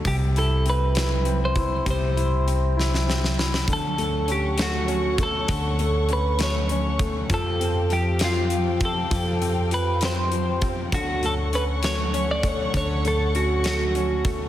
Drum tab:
HH |x-x-x-x-x-x-|x-x-x-------|x-x-x-x-x-x-|x-x-x-x-x-x-|
SD |------o-----|------oooooo|------o-----|------o-----|
BD |o---------o-|o-----------|o---------o-|o---------o-|

HH |x-x-x-x-x-x-|x-x-x-x-x-x-|x-x-x-x-x-x-|x-x-x-x-x-x-|
SD |------o-----|------o-----|------o-----|------o-----|
BD |o---------o-|o---------o-|o---------o-|o---------o-|